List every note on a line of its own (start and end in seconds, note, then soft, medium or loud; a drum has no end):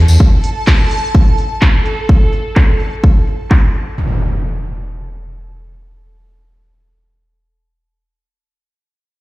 0.00 2.10 A4 medium
0.00 2.10 A5 medium
0.08 0.17 E2 medium
0.08 tambourine medium
0.20 kick loud
0.44 open hi-hat loud
0.67 kick loud
0.67 clap loud
0.91 open hi-hat loud
1.15 kick loud
1.38 open hi-hat loud
1.62 kick loud
1.62 clap loud
1.86 open hi-hat loud
2.09 kick loud
2.33 open hi-hat loud
2.56 kick loud
2.56 clap loud
2.80 open hi-hat loud
3.04 kick loud
3.27 open hi-hat loud
3.51 kick loud
3.51 clap loud
3.75 open hi-hat loud
3.98 impact medium